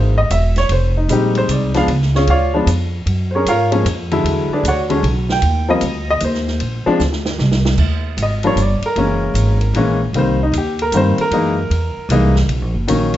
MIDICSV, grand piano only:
0, 0, Header, 1, 2, 480
1, 0, Start_track
1, 0, Key_signature, -3, "major"
1, 0, Tempo, 393185
1, 853, Time_signature, 3, 2, 24, 8
1, 16078, End_track
2, 0, Start_track
2, 0, Title_t, "Grand piano"
2, 0, Program_c, 0, 0
2, 0, Note_on_c, 0, 52, 52
2, 0, Note_on_c, 0, 56, 46
2, 0, Note_on_c, 0, 58, 48
2, 0, Note_on_c, 0, 63, 54
2, 0, Note_on_c, 0, 72, 60
2, 143, Note_off_c, 0, 52, 0
2, 144, Note_off_c, 0, 56, 0
2, 145, Note_off_c, 0, 58, 0
2, 149, Note_off_c, 0, 63, 0
2, 200, Note_off_c, 0, 72, 0
2, 216, Note_on_c, 0, 75, 87
2, 373, Note_off_c, 0, 75, 0
2, 383, Note_on_c, 0, 76, 81
2, 682, Note_off_c, 0, 76, 0
2, 706, Note_on_c, 0, 73, 91
2, 859, Note_off_c, 0, 73, 0
2, 879, Note_on_c, 0, 72, 74
2, 1171, Note_off_c, 0, 72, 0
2, 1188, Note_on_c, 0, 63, 49
2, 1329, Note_off_c, 0, 63, 0
2, 1340, Note_on_c, 0, 55, 57
2, 1340, Note_on_c, 0, 56, 52
2, 1345, Note_on_c, 0, 60, 52
2, 1347, Note_on_c, 0, 63, 62
2, 1374, Note_on_c, 0, 67, 73
2, 1659, Note_off_c, 0, 67, 0
2, 1681, Note_on_c, 0, 72, 92
2, 1828, Note_off_c, 0, 72, 0
2, 1845, Note_on_c, 0, 74, 59
2, 2070, Note_off_c, 0, 55, 0
2, 2070, Note_off_c, 0, 56, 0
2, 2072, Note_off_c, 0, 60, 0
2, 2074, Note_off_c, 0, 63, 0
2, 2132, Note_on_c, 0, 53, 62
2, 2135, Note_off_c, 0, 74, 0
2, 2135, Note_on_c, 0, 56, 55
2, 2137, Note_on_c, 0, 59, 59
2, 2141, Note_on_c, 0, 62, 72
2, 2165, Note_on_c, 0, 77, 90
2, 2255, Note_off_c, 0, 77, 0
2, 2282, Note_off_c, 0, 53, 0
2, 2284, Note_off_c, 0, 56, 0
2, 2285, Note_off_c, 0, 59, 0
2, 2286, Note_off_c, 0, 62, 0
2, 2637, Note_on_c, 0, 73, 72
2, 2644, Note_on_c, 0, 61, 57
2, 2645, Note_on_c, 0, 65, 57
2, 2646, Note_on_c, 0, 68, 57
2, 2788, Note_off_c, 0, 73, 0
2, 2791, Note_off_c, 0, 61, 0
2, 2792, Note_off_c, 0, 65, 0
2, 2792, Note_off_c, 0, 68, 0
2, 2810, Note_on_c, 0, 77, 86
2, 2813, Note_on_c, 0, 74, 67
2, 2814, Note_on_c, 0, 73, 61
2, 2822, Note_on_c, 0, 65, 71
2, 3099, Note_off_c, 0, 77, 0
2, 3099, Note_on_c, 0, 53, 59
2, 3100, Note_on_c, 0, 56, 54
2, 3101, Note_off_c, 0, 73, 0
2, 3101, Note_off_c, 0, 74, 0
2, 3105, Note_off_c, 0, 65, 0
2, 3107, Note_on_c, 0, 62, 68
2, 3111, Note_on_c, 0, 59, 55
2, 3247, Note_off_c, 0, 53, 0
2, 3247, Note_off_c, 0, 56, 0
2, 3251, Note_off_c, 0, 62, 0
2, 3253, Note_off_c, 0, 59, 0
2, 4040, Note_on_c, 0, 72, 41
2, 4059, Note_off_c, 0, 72, 0
2, 4089, Note_on_c, 0, 73, 56
2, 4099, Note_on_c, 0, 61, 52
2, 4100, Note_on_c, 0, 70, 52
2, 4103, Note_on_c, 0, 68, 56
2, 4235, Note_off_c, 0, 73, 0
2, 4240, Note_off_c, 0, 61, 0
2, 4241, Note_off_c, 0, 70, 0
2, 4242, Note_off_c, 0, 68, 0
2, 4255, Note_on_c, 0, 77, 87
2, 4263, Note_on_c, 0, 65, 68
2, 4264, Note_on_c, 0, 70, 74
2, 4267, Note_on_c, 0, 73, 67
2, 4532, Note_on_c, 0, 56, 55
2, 4536, Note_on_c, 0, 53, 57
2, 4540, Note_on_c, 0, 58, 58
2, 4542, Note_on_c, 0, 61, 68
2, 4543, Note_off_c, 0, 77, 0
2, 4547, Note_off_c, 0, 65, 0
2, 4548, Note_off_c, 0, 70, 0
2, 4549, Note_off_c, 0, 73, 0
2, 4685, Note_off_c, 0, 56, 0
2, 4687, Note_off_c, 0, 53, 0
2, 4689, Note_off_c, 0, 58, 0
2, 4690, Note_off_c, 0, 61, 0
2, 5026, Note_on_c, 0, 50, 69
2, 5028, Note_on_c, 0, 54, 59
2, 5032, Note_on_c, 0, 56, 56
2, 5036, Note_on_c, 0, 64, 72
2, 5531, Note_on_c, 0, 68, 51
2, 5531, Note_on_c, 0, 74, 61
2, 5538, Note_on_c, 0, 62, 55
2, 5542, Note_on_c, 0, 71, 47
2, 5636, Note_off_c, 0, 50, 0
2, 5637, Note_off_c, 0, 54, 0
2, 5639, Note_off_c, 0, 56, 0
2, 5641, Note_off_c, 0, 64, 0
2, 5677, Note_off_c, 0, 68, 0
2, 5677, Note_off_c, 0, 74, 0
2, 5680, Note_off_c, 0, 62, 0
2, 5683, Note_off_c, 0, 71, 0
2, 5712, Note_on_c, 0, 78, 78
2, 5718, Note_on_c, 0, 73, 61
2, 5720, Note_on_c, 0, 74, 61
2, 5721, Note_on_c, 0, 66, 63
2, 5886, Note_off_c, 0, 78, 0
2, 5890, Note_off_c, 0, 73, 0
2, 5891, Note_off_c, 0, 74, 0
2, 5892, Note_off_c, 0, 66, 0
2, 5977, Note_on_c, 0, 50, 63
2, 5979, Note_on_c, 0, 56, 60
2, 5980, Note_on_c, 0, 54, 58
2, 5986, Note_on_c, 0, 61, 70
2, 6128, Note_off_c, 0, 50, 0
2, 6129, Note_off_c, 0, 54, 0
2, 6129, Note_off_c, 0, 56, 0
2, 6132, Note_off_c, 0, 61, 0
2, 6495, Note_on_c, 0, 79, 100
2, 6924, Note_off_c, 0, 79, 0
2, 6942, Note_on_c, 0, 53, 70
2, 6948, Note_on_c, 0, 55, 61
2, 6954, Note_on_c, 0, 60, 81
2, 6957, Note_on_c, 0, 58, 71
2, 6964, Note_on_c, 0, 75, 89
2, 7090, Note_off_c, 0, 53, 0
2, 7093, Note_off_c, 0, 55, 0
2, 7096, Note_off_c, 0, 60, 0
2, 7098, Note_off_c, 0, 58, 0
2, 7398, Note_off_c, 0, 75, 0
2, 7453, Note_on_c, 0, 75, 99
2, 7598, Note_off_c, 0, 75, 0
2, 7623, Note_on_c, 0, 72, 68
2, 8348, Note_off_c, 0, 72, 0
2, 8377, Note_on_c, 0, 53, 86
2, 8380, Note_on_c, 0, 56, 74
2, 8383, Note_on_c, 0, 60, 85
2, 8387, Note_on_c, 0, 62, 95
2, 8528, Note_off_c, 0, 53, 0
2, 8529, Note_off_c, 0, 56, 0
2, 8531, Note_off_c, 0, 60, 0
2, 8533, Note_off_c, 0, 62, 0
2, 10042, Note_on_c, 0, 75, 68
2, 10304, Note_on_c, 0, 53, 61
2, 10305, Note_on_c, 0, 55, 62
2, 10308, Note_on_c, 0, 58, 58
2, 10313, Note_on_c, 0, 62, 71
2, 10317, Note_off_c, 0, 75, 0
2, 10339, Note_on_c, 0, 73, 88
2, 10451, Note_off_c, 0, 53, 0
2, 10451, Note_off_c, 0, 55, 0
2, 10453, Note_off_c, 0, 58, 0
2, 10455, Note_off_c, 0, 62, 0
2, 10480, Note_off_c, 0, 73, 0
2, 10523, Note_on_c, 0, 74, 74
2, 10797, Note_off_c, 0, 74, 0
2, 10815, Note_on_c, 0, 70, 82
2, 10950, Note_on_c, 0, 52, 51
2, 10953, Note_on_c, 0, 56, 49
2, 10954, Note_on_c, 0, 58, 47
2, 10961, Note_on_c, 0, 61, 64
2, 11676, Note_off_c, 0, 52, 0
2, 11677, Note_off_c, 0, 56, 0
2, 11678, Note_off_c, 0, 58, 0
2, 11681, Note_off_c, 0, 61, 0
2, 11873, Note_off_c, 0, 70, 0
2, 11909, Note_on_c, 0, 52, 60
2, 11920, Note_on_c, 0, 56, 61
2, 11921, Note_on_c, 0, 58, 57
2, 11925, Note_on_c, 0, 61, 69
2, 12187, Note_off_c, 0, 52, 0
2, 12192, Note_off_c, 0, 56, 0
2, 12192, Note_off_c, 0, 58, 0
2, 12195, Note_off_c, 0, 61, 0
2, 12394, Note_on_c, 0, 51, 54
2, 12400, Note_on_c, 0, 55, 50
2, 12400, Note_on_c, 0, 58, 47
2, 12411, Note_on_c, 0, 60, 54
2, 12434, Note_on_c, 0, 72, 71
2, 12669, Note_off_c, 0, 51, 0
2, 12671, Note_off_c, 0, 55, 0
2, 12672, Note_off_c, 0, 58, 0
2, 12677, Note_off_c, 0, 60, 0
2, 12711, Note_off_c, 0, 72, 0
2, 12733, Note_on_c, 0, 63, 66
2, 12876, Note_off_c, 0, 63, 0
2, 12913, Note_on_c, 0, 67, 69
2, 13190, Note_off_c, 0, 67, 0
2, 13209, Note_on_c, 0, 70, 81
2, 13353, Note_off_c, 0, 70, 0
2, 13354, Note_on_c, 0, 51, 56
2, 13356, Note_on_c, 0, 55, 58
2, 13358, Note_on_c, 0, 58, 53
2, 13366, Note_on_c, 0, 60, 66
2, 13393, Note_on_c, 0, 72, 94
2, 13627, Note_off_c, 0, 51, 0
2, 13628, Note_off_c, 0, 55, 0
2, 13629, Note_off_c, 0, 58, 0
2, 13634, Note_off_c, 0, 60, 0
2, 13670, Note_off_c, 0, 72, 0
2, 13687, Note_on_c, 0, 70, 86
2, 13826, Note_on_c, 0, 52, 61
2, 13832, Note_on_c, 0, 56, 58
2, 13836, Note_on_c, 0, 63, 67
2, 13837, Note_on_c, 0, 58, 57
2, 14103, Note_off_c, 0, 52, 0
2, 14106, Note_off_c, 0, 56, 0
2, 14108, Note_off_c, 0, 58, 0
2, 14108, Note_off_c, 0, 63, 0
2, 14744, Note_off_c, 0, 70, 0
2, 14781, Note_on_c, 0, 52, 68
2, 14781, Note_on_c, 0, 56, 62
2, 14791, Note_on_c, 0, 58, 62
2, 14795, Note_on_c, 0, 63, 73
2, 15059, Note_off_c, 0, 52, 0
2, 15059, Note_off_c, 0, 56, 0
2, 15064, Note_off_c, 0, 58, 0
2, 15066, Note_off_c, 0, 63, 0
2, 15719, Note_on_c, 0, 51, 59
2, 15724, Note_on_c, 0, 54, 54
2, 15729, Note_on_c, 0, 58, 51
2, 15732, Note_on_c, 0, 61, 59
2, 16078, Note_off_c, 0, 51, 0
2, 16078, Note_off_c, 0, 54, 0
2, 16078, Note_off_c, 0, 58, 0
2, 16078, Note_off_c, 0, 61, 0
2, 16078, End_track
0, 0, End_of_file